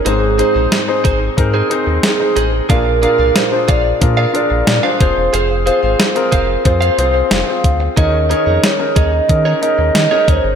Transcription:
<<
  \new Staff \with { instrumentName = "Soft synth lead" } { \time 4/4 \key f \minor \tempo 4 = 91 aes'4 r2 aes'4 | bes'4 c''8 d''8 bes'8 d''4 c''8 | aes'4 r2 f''4 | ees''4 des''8 ees''4 ees''4 c''8 | }
  \new Staff \with { instrumentName = "Clean electric guitar" } { \time 4/4 \key f \minor <ees' aes' c''>16 r16 <ees' aes' c''>16 <ees' aes' c''>16 r8 <ees' aes' c''>16 r8 <ees' aes' c''>16 r4 <ees' aes' c''>16 r16 | <aes' d'' f''>16 r16 <aes' d'' f''>16 <aes' d'' f''>16 r8 <aes' d'' f''>16 r8 <aes' d'' f''>16 r8. <aes' d'' f''>16 <aes' c'' f''>16 r16 | <aes' c'' f''>16 r16 <aes' c'' f''>16 <aes' c'' f''>16 r8 <aes' c'' f''>16 r8 <aes' c'' f''>16 r4. | <ees' aes' des''>16 r16 <ees' aes' des''>16 <ees' aes' des''>16 r8 <ees' aes' des''>16 r8 <ees' aes' des''>16 r8. <ees' aes' des''>16 <ees' aes' des''>16 r16 | }
  \new Staff \with { instrumentName = "Grand piano" } { \time 4/4 \key f \minor <c' ees' aes' c''>8 <c' ees' aes' c''>8. <c' ees' aes' c''>8. <c' ees' aes' bes'>8 <c' ees' aes' c''>8. <c' ees' aes' c''>8. | <d' f' aes' bes'>8 <d' f' aes' bes'>8. <d' f' aes' c''>8. <d' f' aes' bes'>8 <d' f' aes' bes'>8. <d' f' aes' c''>16 <c' f' aes' c''>8~ | <c' f' aes' c''>16 r16 <c' f' aes' c''>8. <c' f' aes' bes'>8. <c' f' aes' c''>8 <c' f' aes' c''>8. <c' f' aes' c''>8. | <des' ees' aes' bes'>8 <des' ees' aes' bes'>8. <des' ees' aes' bes'>8. <des' ees' aes' bes'>8 <des' ees' aes' bes'>8. <des' ees' aes' bes'>8. | }
  \new Staff \with { instrumentName = "Grand piano" } { \clef bass \time 4/4 \key f \minor aes,4. r2 r8 | bes,4. r2 r8 | r1 | ees4. r2 r8 | }
  \new Staff \with { instrumentName = "Analog synth bass" } { \clef bass \time 4/4 \key f \minor aes,,8. bes,,16 r8 aes,,8 aes,8 r16 ees,16 r8 a,,8 | bes,,8. c,16 r8 bes,,8 bes,8 r16 bes,,16 bes,16 r16 f,,16 e,,16 | f,,8. aes,,16 r8 f,,8 f,8 c,8 f,,16 r16 d,8 | ees,8. f,16 r8 ees,8 ees8 r16 ees,16 ees16 r16 ees,16 g,,16 | }
  \new DrumStaff \with { instrumentName = "Drums" } \drummode { \time 4/4 hh8 hh8 <hh sn>8 <hh bd>8 <hh bd>8 hh8 <hh sn>8 hh8 | <hh bd>8 hh8 <hh sn>8 <hh bd>8 <hh bd>8 hh8 <hh sn>8 <hh bd>8 | hh8 hh8 <hh sn>16 hh16 <hh bd>8 <hh bd>16 hh16 hh8 <hh sn>8 <hh bd>8 | <hh bd>8 hh8 <hh sn>8 <hh bd>8 <hh bd>8 hh8 <hh sn>8 <hh bd>8 | }
>>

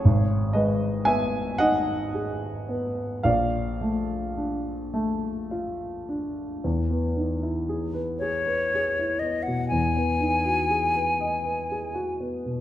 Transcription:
<<
  \new Staff \with { instrumentName = "Flute" } { \time 6/8 \key e \lydian \tempo 4. = 39 r2. | r2. | r4. cis''4 dis''16 fis''16 | gis''2~ gis''8 r8 | }
  \new Staff \with { instrumentName = "Grand piano" } { \time 6/8 \key e \lydian << { <gis' cis''>8 <b' dis''>8 <e'' gis''>8 <dis'' fis''>4. | <d'' eis''>4. r4. | r2. | r2. | } \\ { gis,,8 gis8 b8 dis'8 gis'8 b8 | ais,,8 a8 d'8 a8 eis'8 d'8 | e,16 b16 dis'16 e'16 gis'16 b'16 gis'16 b'16 gis'16 e'16 b16 b,16 | e,16 b16 dis'16 fis'16 gis'16 b'16 dis''16 b'16 gis'16 fis'16 b16 b,16 | } >> }
>>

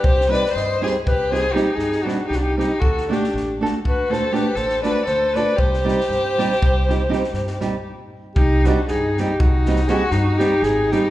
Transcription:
<<
  \new Staff \with { instrumentName = "Alto saxophone" } { \time 11/8 \tempo 4 = 119 c''8 d''8 ees''8 c''8 b'8 c''8 g'8 aes'8 fis'8 g'32 fis'32 g'16 g'8 | a'8 g'4 r8 b'8 c''8 b'8 c''8 d''8 c''8 d''8 | c''1~ c''8 r4 | g'8 fis'8 aes'8 g'8 fis'4 aes'8 fis'8 g'8 aes'8 g'8 | }
  \new Staff \with { instrumentName = "Violin" } { \time 11/8 g'8 b'8 c''8 aes'8 g'8 aes'8 ees'8 ees'8 d'8 ees'32 d'32 ees'16 ees'8 | fis'8 d'4 r8 fis'8 a'8 g'8 a'8 b'8 a'8 b'8 | g'1~ g'8 r4 | ees'8 d'8 ees'8 ees'8 ees'4 fis'8 ees'8 ees'8 ees'8 ees'8 | }
  \new Staff \with { instrumentName = "Nylon-string guitar" } { \time 11/8 r8 <g c' ees' g'>8 r8 <g c' ees' g'>8 r8 <g c' ees' g'>8 <g c' ees' g'>8 r8 <g c' ees' g'>8 r8 <g c' ees' g'>8 | r8 <a d' fis' a'>8 r8 <a d' fis' a'>8 r8 <a d' fis' a'>8 <a d' fis' a'>8 r8 <a d' fis' a'>8 r8 <a d' fis' a'>8 | r8 <g c' ees' g'>8 r8 <g c' ees' g'>8 r8 <g c' ees' g'>8 <g c' ees' g'>8 r8 <g c' ees' g'>8 r4 | r8 <g c' ees' g'>8 r8 <g c' ees' g'>8 r8 <g c' ees' g'>8 <g c' ees' g'>8 r8 <g c' ees' g'>8 r8 <g c' ees' g'>8 | }
  \new Staff \with { instrumentName = "Upright bass" } { \clef bass \time 11/8 c,4 g,4 c,4. g,4 c,4 | d,4 a,,4 d,4. a,,4 d,4 | c,4 g,4 c,4. g,4 r4 | c,4 g,4 c,4. g,4 aes,,4 | }
  \new DrumStaff \with { instrumentName = "Drums" } \drummode { \time 11/8 bd16 sn16 sn16 sn16 sn8 sn8 bd8 sn8 sn8 sn16 sn16 sn8 sn8 sn8 | bd16 sn16 sn16 sn16 sn8 sn8 bd8 sn8 sn8 sn16 sn16 sn8 sn8 sn8 | bd16 sn16 sn16 sn16 sn8 sn16 sn16 bd8 sn8 sn16 sn16 sn16 sn16 sn8 r4 | bd8 sn8 sn8 sn8 bd8 sn16 sn16 sn8 sn8 sn8 sn8 sn8 | }
>>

